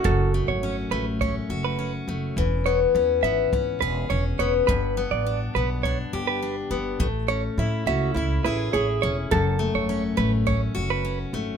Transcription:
<<
  \new Staff \with { instrumentName = "Clean electric guitar" } { \time 4/4 \key fis \dorian \tempo 4 = 104 a'8 r16 cis''8 r16 b'16 r16 cis''16 r8 b'8 r8. | r8 cis''16 r8. e''8 r8 b'8 cis''16 r16 cis''16 r16 | b'8 r16 d''8 r16 b'16 r16 cis''16 r8 b'8 r8. | r8 cis''16 r8. e''8 r8 b'8 cis''16 r16 cis''16 r16 |
a'8 r16 cis''8 r16 b'16 r16 cis''16 r8 b'8 r8. | }
  \new Staff \with { instrumentName = "Nylon-string guitar" } { \time 4/4 \key fis \dorian fis'2.~ fis'8 r8 | r1 | r1 | r4 e'8 fis'8 e'8 e'8 gis'4 |
a'2. r4 | }
  \new Staff \with { instrumentName = "Steel-string acoustic guitar" } { \time 4/4 \key fis \dorian fis,8 a8 cis'8 a8 cis'8 fis'8 cis'8 a8 | e8 b8 cis'8 b8 cis'8 gis'8 cis'8 b8 | g,8 b8 d'8 b8 d'8 g'8 d'8 b8 | a8 cis'8 e'8 cis'8 e'8 gis'8 e'8 cis'8 |
fis,8 a8 cis'8 a8 cis'8 fis'8 cis'8 a8 | }
  \new Staff \with { instrumentName = "Upright bass" } { \clef bass \time 4/4 \key fis \dorian fis,,8. gis,,8. a,,4 fis,,4 fis,,8 | e,,4 e,8 gis,,8 gis,,8 e,,8 e,,8 e,,8 | g,,8. a,,8. b,,4 g,,4 g,,8 | a,,4 a,8 cis,8 cis,8 a,,8 a,,8 e,,8 |
fis,,8. gis,,8. a,,4 fis,,4 gis,,8 | }
  \new DrumStaff \with { instrumentName = "Drums" } \drummode { \time 4/4 bd4 r4 bd4 r4 | bd4 r4 bd4 r4 | bd4 r4 bd4 r4 | bd4 r4 bd4 r4 |
bd4 r4 bd4 r4 | }
>>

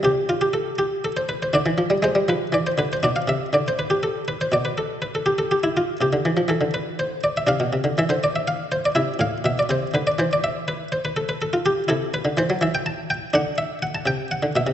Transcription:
<<
  \new Staff \with { instrumentName = "Harpsichord" } { \time 12/8 \key c \major \tempo 4. = 81 << { g'8 f'16 g'16 a'8 g'8 a'16 c''16 b'16 c''16 d''4 c''8 b'8 d''16 c''16 b'16 c''16 | d''16 f''16 e''8 d''16 c''16 b'16 g'16 a'8 b'16 c''16 d''16 b'16 a'8 b'16 a'16 g'16 a'16 g'16 e'16 f'8 | g'4 a'8 b'8 c''8 d''16 e''16 f''4 e''16 c''16 d''16 e''16 f''8 c''16 d''16 | e''8 f''8 e''16 d''16 c''8 b'16 d''16 c''16 d''16 e''8 b'8 c''16 b'16 a'16 b'16 a'16 f'16 g'8 |
\key c \lydian a'8 b'8 c''8 e''16 g''16 a''8 g''8 fis''8 e''8 fis''16 a''16 g''8 fis''8 e''8 | } \\ { r2. d'2. | d'1. | r2. d'2. | e'1. |
e'2. d'2. | } >> }
  \new Staff \with { instrumentName = "Harpsichord" } { \clef bass \time 12/8 \key c \major c2. d16 e16 f16 g16 aes16 g16 f8 e8 d8 | b,8 c8 d2 b,2. | c16 d16 e16 f16 e16 d4.~ d16 c16 b,16 c16 d16 e16 d4.~ d16 | c8 a,8 b,8 c8 d8 e2.~ e8 |
\key c \lydian c8. d16 e16 fis16 e4. d4. c8. d16 b,16 c16 | }
>>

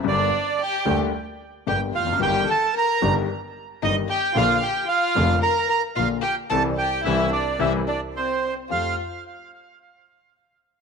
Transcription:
<<
  \new Staff \with { instrumentName = "Bandoneon" } { \time 4/4 \key f \major \tempo 4 = 111 d''4 g''8. r4 r16 g''8 f''8 | g''8 a''8 bes''8. r4 r16 ees''8 g''8 | f''8 g''8 f''4 bes''8 bes''8 f''8 g''8 | a''8 g''8 e''8 d''8 e''8 d''8 c''8. r16 |
f''8 r2. r8 | }
  \new Staff \with { instrumentName = "Violin" } { \time 4/4 \key f \major d'4 g'8. r4 r16 g'8 f'8 | g'8 a'8 bes'8. r4 r16 ees'8 g'8 | f'8 g'8 f'4 bes'8 bes'8 f'8 g'8 | a'8 g'8 e'8 d'8 e'8 d'8 c'8. r16 |
f'8 r2. r8 | }
  \new Staff \with { instrumentName = "Grand piano" } { \clef bass \time 4/4 \key f \major <g,, g, d g bes g'>8 r4 <d, d g bes g'>8 r4 <g,, g, d g bes g'>8 r32 e,32 f,32 ges,32 | <g,, g, ees g bes g'>8 r4 <g,, g, ees g bes g'>8 r4 <g,, g, ees g bes g'>8 r8 | <bes,, bes, d f bes f'>8 r4 <f,, f, d f bes f'>8 r4 <bes,, bes, d f bes f'>8 r8 | <c e g>8 r8 <c e g>8 r8 <c e g>8 r4. |
<f, a f' g'>8 r2. r8 | }
  \new Staff \with { instrumentName = "Double bass" } { \clef bass \time 4/4 \key f \major g,,8 r4 d,8 r4 g,,8 f,,8 | g,,8 r4 g,,8 r4 g,,8 r8 | bes,,8 r4 f,,8 r4 bes,,8 r8 | c,8 r8 c,8 r8 c,8 r4. |
f,8 r2. r8 | }
>>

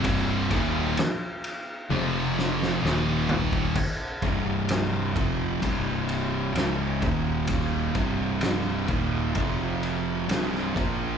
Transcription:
<<
  \new Staff \with { instrumentName = "Distorted electric guitar" } { \clef bass \time 4/4 \key c \minor \tempo 4 = 64 <c, g, c>8 <ees, bes, ees>8 r4 <f, c f>4 <ees, bes, ees>4 | r8 <c, g, c>4 <f, c f>8 <c, g, c>4 <des, aes, des>8 <ees, bes, ees>8~ | <ees, bes, ees>8 <c, g, c>4 <ees, bes, ees>8 <f, c f>4 <c, g, c>8 <bes, f bes>8 | }
  \new Staff \with { instrumentName = "Distorted electric guitar" } { \clef bass \time 4/4 \key c \minor <c, g, c>8 <ees, bes, ees>8 r4 <f, c f>4 <ees, bes, ees>4 | r8 <c, g, c>4 <f, c f>8 <c, g, c>4 <des, aes, des>8 <ees, bes, ees>8~ | <ees, bes, ees>8 <c, g, c>4 <ees, bes, ees>8 <f, c f>4 <c, g, c>8 <bes, f bes>8 | }
  \new Staff \with { instrumentName = "Distorted electric guitar" } { \clef bass \time 4/4 \key c \minor <c, g, c>8 <ees, bes, ees>8 r4 <f, c f>4 <ees, bes, ees>4 | r1 | r1 | }
  \new Staff \with { instrumentName = "Fingered electric bass" } { \clef bass \time 4/4 \key c \minor c,,8 ees,,8 r4 f,,4 ees,,4 | r8 c,,4 f,,8 c,,4 des,,8 ees,,8~ | ees,,8 c,,4 ees,,8 f,,4 c,,8 bes,,8 | }
  \new DrumStaff \with { instrumentName = "Drums" } \drummode { \time 4/4 <bd cymr>8 <bd cymr>8 <cymr sn>8 cymr8 tommh8 sn16 sn16 sn8 tomfh16 bd16 | <cymc bd>8 <bd cymr>8 <cymr sn>8 <bd cymr>8 <bd cymr>8 cymr8 <cymr sn>8 <bd cymr>8 | <bd cymr>8 <bd cymr>8 <cymr sn>8 <bd cymr>8 <bd cymr>8 cymr8 <cymr sn>16 sn16 <bd cymr>8 | }
>>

